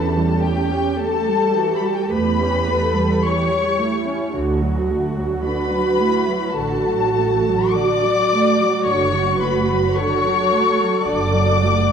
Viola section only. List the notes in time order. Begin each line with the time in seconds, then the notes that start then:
Already playing: E3 G4
0.15 G3
0.42 A3
0.70 C#4
0.98 A3
1.26 G3
1.54 E3
1.81 G3
2.09 A3
2.37 C#4
2.65 A3
2.94 G3
3.23 E3
3.50 G3
3.78 A3
4.06 C#4
4.33 D3 F#4
4.61 F#3
4.88 A3
5.16 F#3
5.43 D3
5.71 F#3
5.99 A3
6.28 F#3
6.56 D3
6.85 F#3
7.16 A3
7.47 F#3
7.75 D3
8.04 F#3
8.32 A3
8.60 F#3
8.86 D3 F#4
9.15 F#3
9.42 A3
9.69 F#3
9.96 D3
10.24 F#3
10.51 A3
10.79 F#3
11.06 D3
11.33 F#3
11.60 A3
11.88 F#3